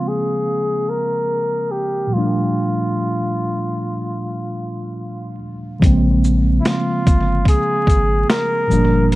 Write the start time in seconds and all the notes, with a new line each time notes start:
Already playing: C#3 F3 G#3 A#3 C4
0.08 G#4
0.89 A#4
1.71 G4
2.07 A#2 F3
2.12 G3 A3 F4
2.18 D4
5.80 A#1 C#3 F3 G#3, kick, closed hi-hat
5.84 A#3 C4
6.24 shaker
6.61 E4
6.65 F4, snare, closed hi-hat
7.07 G1, kick, closed hi-hat, shaker
7.45 G#4, kick, closed hi-hat
7.87 G#1, kick, closed hi-hat, shaker
8.30 A#4, snare, closed hi-hat
8.67 G1 A#2 F3 G3, shaker
8.71 A#3 D4
9.12 closed hi-hat